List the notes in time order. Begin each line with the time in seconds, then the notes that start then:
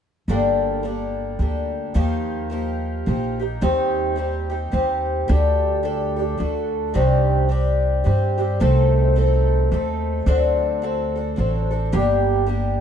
0.28 G1 G2 D3 G3 A#3 D4 A4
0.83 G3 A#3 D4 A4
1.39 D2 G3 A#3 D4 A4
1.94 D#2 D#3 F3 A#3 D#4 G4
2.50 F3 A#3 D#4 G4
3.06 A#1 F3 A#3 D#4 G4
3.40 A#3 D#4 G4
3.61 D#2 D#3 G3 C4 D#4 G4
4.16 G3 C4 D#4 G4
4.50 C4 D#4 G4
4.72 D#2 G3 C4 D#4 G4
5.28 D2 D3 G3 D4 G4 A4
5.83 G3 D4 G4 A4
6.17 D4 G4 A4
6.38 D2 A3 D4 F#4 A4
6.94 C2 C3 D#3 G3 C4 D4 G4
7.49 G3 C4 D4 G4
8.04 G2 G3 C4 D4 G4
8.38 G3 C4 D4 G4
8.60 C2 C3 A3 C4 D#4 A4
9.16 A3 C4 D#4 A4
9.72 D#2 A3 C4 D#4 A4
10.26 D2 D3 F#3 C4 D4 A4
10.82 F#3 C4 D4 A4
11.16 C4 D4 A4
11.36 A1 F#3 C4 D4 A4
11.71 C4 D4 A4
11.92 G1 G2 D3 G3 A#3 D4 G4
12.46 G3 A#3 D4 G4